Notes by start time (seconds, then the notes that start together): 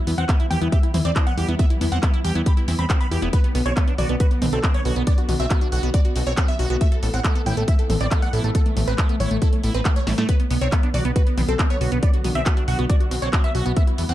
Already playing: E3 G3 B3
0.07 E2 B3 E4, open hi-hat
0.18 E2 C4 F#5, closed hi-hat
0.29 B3 E4, kick, clap, closed hi-hat
0.40 E4, closed hi-hat
0.50 E2 G4 G5, open hi-hat, mid tom
0.61 E2 B3 E4, closed hi-hat
0.72 G4 E5, kick, closed hi-hat
0.83 E4, closed hi-hat
0.94 E2 C4 E4, open hi-hat, mid tom
1.05 E2 C4 D5, closed hi-hat
1.16 C4 E4, kick, clap, closed hi-hat
1.27 B3 F#5, closed hi-hat
1.37 E2 E4 G4, open hi-hat
1.48 E2 B3 E4, closed hi-hat
1.59 B3 E5, kick, closed hi-hat
1.70 E4, closed hi-hat
1.81 E2 B3 E4, open hi-hat, mid tom
1.92 E2 C4 F#5, closed hi-hat
2.03 B3 E4, kick, clap, closed hi-hat
2.14 E4, closed hi-hat
2.24 E2 G4 G5, open hi-hat
2.35 E2 B3 E4, closed hi-hat
2.46 G4 B5, kick, closed hi-hat
2.57 E4, closed hi-hat
2.68 E2 C4 E4, open hi-hat
2.79 E2 C4 B5
2.90 C4 E4, kick, clap, closed hi-hat
3.00 B3 B5, closed hi-hat
3.11 E2 E4 G4, open hi-hat
3.22 E1 B3 E4, closed hi-hat
3.33 D3 F#3 B3 B4, kick, closed hi-hat
3.44 B3, closed hi-hat
3.55 B1 B3, open hi-hat
3.66 B1 C4 C#5, closed hi-hat
3.77 B3, kick, clap, closed hi-hat
3.87 B3 D4, closed hi-hat
3.98 B1 F#4 D5, open hi-hat, mid tom
4.09 B1 B3, closed hi-hat
4.20 F#4 B4, kick, closed hi-hat
4.31 B3, closed hi-hat
4.42 B1 B3 C4, open hi-hat, mid tom
4.53 B1 C4 A4, closed hi-hat
4.64 B3 C4, kick, clap, closed hi-hat
4.74 B3 C#5, closed hi-hat
4.85 B1 B3 F#4, open hi-hat
4.96 B1 B3, closed hi-hat
5.07 B3 D5, kick, closed hi-hat
5.18 F#4, closed hi-hat
5.29 B1 B3 F#4, open hi-hat, mid tom
5.40 B1 C4 E5, closed hi-hat
5.50 B3 F#4, kick, clap, closed hi-hat
5.61 D4 F#4, closed hi-hat
5.72 B1 F#4 F#5, open hi-hat
5.83 B1 B3 F#4, closed hi-hat
5.94 F#4 D5, kick, closed hi-hat
6.05 F#4, closed hi-hat
6.16 B1 C4 F#4, open hi-hat
6.26 B1 C4 C#5, closed hi-hat
6.37 C4 F#4, kick, clap, closed hi-hat
6.48 B3 E5, closed hi-hat
6.59 B1 F#4, open hi-hat
6.70 B1 B3 F#4, closed hi-hat
6.81 E3 A3 E5, kick, closed hi-hat
6.92 A4, closed hi-hat
7.03 A1 A3 A4, open hi-hat
7.14 A1 C4 F#5, closed hi-hat
7.24 A3 A4, kick, clap, closed hi-hat
7.35 B3 A4, closed hi-hat
7.46 A1 E4 G5, open hi-hat, mid tom
7.57 A1 A3 A4, closed hi-hat
7.68 E4 E5, kick, closed hi-hat
7.79 A4, closed hi-hat
7.90 A1 C4 A4, open hi-hat, mid tom
8.00 A1 C4 D5, closed hi-hat
8.11 B3 A4, kick, clap, closed hi-hat
8.22 A3 F#5, closed hi-hat
8.33 A1 E4 A4, open hi-hat
8.44 A1 A3 A4, closed hi-hat
8.55 A3 A4, kick, closed hi-hat
8.66 A3, closed hi-hat
8.77 A1 A3, open hi-hat, mid tom
8.87 A1 C4 B4, closed hi-hat
8.98 A3, kick, clap, closed hi-hat
9.09 A3 B3, closed hi-hat
9.20 A1 E4 C#5, open hi-hat, mid tom
9.31 A1 A3, closed hi-hat
9.42 E4 A4, kick, closed hi-hat
9.53 A3, closed hi-hat
9.63 A1 A3 E4, open hi-hat
9.74 A1 C4 B4, closed hi-hat
9.85 A3 E4, kick, clap, closed hi-hat
9.96 A3 C#5, closed hi-hat
10.07 A1 A3 E4, snare, open hi-hat
10.18 A2 A3, snare, closed hi-hat
10.29 D3 F#3 B3 B4, kick, closed hi-hat
10.40 B3, closed hi-hat
10.50 B1 B3, open hi-hat
10.61 B1 C4 C#5, closed hi-hat
10.72 B3, kick, clap, closed hi-hat
10.83 B3 D4, closed hi-hat
10.94 B1 F#4 D5, open hi-hat, mid tom
11.05 B1 B3, closed hi-hat
11.16 F#4 B4, kick, closed hi-hat
11.27 B3, closed hi-hat
11.37 B1 B3 C4, open hi-hat, mid tom
11.48 B1 C4 A4, closed hi-hat
11.59 B3 C4, kick, clap, closed hi-hat
11.70 B3 C#5, closed hi-hat
11.81 B1 B3 F#4, open hi-hat
11.92 B1 B3, closed hi-hat
12.03 B3 D5, kick, closed hi-hat
12.14 F#4, closed hi-hat
12.24 B1 B3 F#4, open hi-hat, mid tom
12.35 B1 C4 E5, closed hi-hat
12.46 B3 F#4, kick, clap, closed hi-hat
12.57 D4 F#4, closed hi-hat
12.68 B1 F#4 F#5, open hi-hat
12.79 B1 B3 F#4, closed hi-hat
12.89 F#4 D5, kick, closed hi-hat
13.00 F#4, closed hi-hat
13.11 B1 C4 F#4, open hi-hat
13.22 B1 C4 C#5, closed hi-hat
13.33 C4 F#4, kick, clap, closed hi-hat
13.44 B3 E5, closed hi-hat
13.55 B1 F#4, open hi-hat
13.66 B1 B3 F#4, closed hi-hat
13.77 E3 G3 B3 E5, kick, closed hi-hat
13.87 E4, closed hi-hat
13.98 E2 B3 E4, open hi-hat
14.09 E2 C4 F#5, closed hi-hat